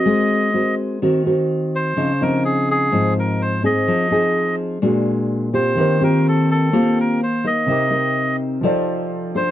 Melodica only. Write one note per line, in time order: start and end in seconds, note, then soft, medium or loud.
0.00 0.75 D#5 loud
1.75 2.23 C5 medium
2.22 2.43 A#4 medium
2.45 2.69 G#4 medium
2.71 3.14 G#4 medium
3.19 3.42 A#4 medium
3.42 3.63 C5 medium
3.65 4.55 D#5 loud
5.54 6.03 C5 medium
6.04 6.27 A#4 medium
6.28 6.50 A4 medium
6.51 6.99 A4 medium
7.00 7.20 A#4 medium
7.23 7.46 C5 medium
7.47 8.36 D#5 loud
9.37 9.51 C5 loud